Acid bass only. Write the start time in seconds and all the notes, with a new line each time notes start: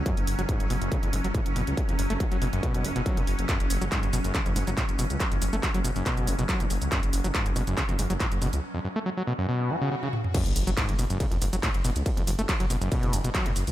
0.06 F#2
0.39 F#3
0.49 G#2
0.60 F#2
0.70 B2
0.82 F#2
0.92 C#3
1.03 F2
1.13 G#2
1.24 F#3
1.35 A2
1.56 B2
1.89 F2
1.99 F#2
2.10 A3
2.20 F#3
2.32 F#3
2.42 B2
2.53 F#2
2.63 B2
2.85 F2
2.96 B2
3.06 F#3
3.17 A2
3.49 F#2
3.82 F#3
3.92 G#2
4.03 F#2
4.13 B2
4.24 F#2
4.35 C#3
4.46 F2
4.56 G#2
4.67 F#3
4.77 A2
4.99 B2
5.32 F2
5.42 F#2
5.53 A3
5.63 F#3
5.74 F#3
5.85 B2
5.96 F#2
6.06 B2
6.27 F2
6.39 B2
6.49 F#3
6.60 A2
6.92 F#2
7.24 F#3
7.35 G#2
7.46 F#2
7.56 B2
7.67 F#2
7.77 C#3
7.89 F2
7.99 G#2
8.10 F#3
8.20 A2
8.42 B2
8.74 F2
8.85 F#2
8.96 A3
9.06 F#3
9.17 F#3
9.27 B2
9.39 F#2
9.49 B2
9.70 F3
9.82 C#3
9.92 C#3
10.03 C#3
10.34 F#2
10.67 F#3
10.77 G#2
10.89 F#2
10.99 B2
11.10 F#2
11.20 C#3
11.31 F2
11.42 G#2
11.53 F#3
11.63 A2
11.84 B2
12.17 F2
12.27 F#2
12.39 A3
12.49 F#3
12.60 F#3
12.70 B2
12.81 F#2
12.92 B2
13.13 F2
13.24 B2
13.34 F#3
13.46 A2